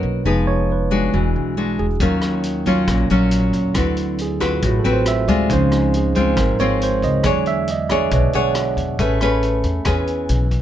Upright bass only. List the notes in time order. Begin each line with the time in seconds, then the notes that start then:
0.03 B1
0.25 F1
1.14 E1
1.36 B1
1.79 E1
2.00 D#2
2.88 A#1
3.10 A#1
3.53 D#2
3.75 D2
4.63 A1
4.85 A1
5.28 D2
5.50 C#2
6.37 G#1
6.59 G#1
7.02 C#2
7.24 E2
8.12 B1
8.34 B1
8.77 E2
8.99 A1
9.64 E2
9.86 E2
10.29 B1